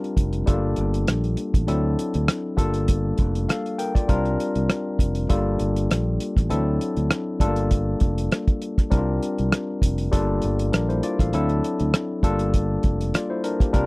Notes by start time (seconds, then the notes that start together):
Already playing: G3 C4 D4 F4 A#4
0.04 closed hi-hat
0.17 F1, kick, closed hi-hat
0.33 closed hi-hat
0.46 G1 G3 A3 D4 F4 A4, kick, closed hi-hat
0.54 A#3
0.76 G1, closed hi-hat
0.94 closed hi-hat
1.07 A#1, cross-stick, closed hi-hat
1.24 closed hi-hat
1.37 closed hi-hat
1.54 A1, kick, closed hi-hat
1.67 D2 F#3 C4 D4 E4 A4, closed hi-hat
1.99 closed hi-hat
2.14 D2, closed hi-hat
2.28 cross-stick, closed hi-hat
2.57 G1 G3 A#3 D4 F4 A4, kick, closed hi-hat
2.74 closed hi-hat
2.88 kick, closed hi-hat
3.18 F1, kick, closed hi-hat
3.35 closed hi-hat
3.49 A4 F5, cross-stick, closed hi-hat
3.66 closed hi-hat
3.79 A#4 G5, closed hi-hat
3.95 F4 D5, kick, cross-stick, closed hi-hat
4.08 C2 G3 C4 D4 F4 A#4, kick, closed hi-hat
4.25 closed hi-hat
4.40 closed hi-hat
4.55 C2, closed hi-hat
4.70 cross-stick, closed hi-hat
4.99 F1, kick, closed hi-hat
5.15 closed hi-hat
5.29 G1 G3 A#3 D4 F4 A4, kick, closed hi-hat
5.59 G1, closed hi-hat
5.76 closed hi-hat
5.91 A#1, cross-stick, closed hi-hat
6.20 closed hi-hat
6.37 A1, kick, cross-stick, closed hi-hat
6.49 D2 E3 C4 D4 E4 A4, closed hi-hat
6.56 F#3
6.81 closed hi-hat
6.97 D2, closed hi-hat
7.11 cross-stick, closed hi-hat
7.40 G1 G3 A3 D4 F4 A4, kick, closed hi-hat
7.47 A#3
7.56 closed hi-hat
7.71 kick, closed hi-hat
8.00 F1, kick, closed hi-hat
8.18 closed hi-hat
8.32 cross-stick, closed hi-hat
8.48 kick, closed hi-hat
8.62 closed hi-hat
8.78 kick, cross-stick, closed hi-hat
8.90 C2 G3 C4 D4 E4 A#4, kick, closed hi-hat
8.98 F4
9.23 closed hi-hat
9.38 C2, closed hi-hat
9.52 cross-stick, closed hi-hat
9.82 F1, kick, closed hi-hat
9.98 closed hi-hat
10.11 G1 G3 A#3 D4 F4 A4, kick, closed hi-hat
10.42 G1, closed hi-hat
10.59 closed hi-hat
10.72 A#1 D4 A#4, cross-stick, closed hi-hat
10.89 E4 C5, closed hi-hat
11.03 F4 D5, closed hi-hat
11.19 A1 A4 F5, kick, cross-stick, closed hi-hat
11.33 D2 F#3 C4 D4 E4 A4, closed hi-hat
11.49 closed hi-hat
11.64 closed hi-hat
11.80 D2, closed hi-hat
11.94 cross-stick, closed hi-hat
12.23 G1 G3 A#3 D4 F4 A4, kick, closed hi-hat
12.39 closed hi-hat
12.54 kick, closed hi-hat
12.83 F1, kick, closed hi-hat
13.01 closed hi-hat
13.14 F4 D5, cross-stick, closed hi-hat
13.30 E4 C5
13.44 D4 A#4, closed hi-hat
13.60 A#3 G4, kick, cross-stick, closed hi-hat
13.72 C2 G3 C4 D4 F4 A#4, kick, closed hi-hat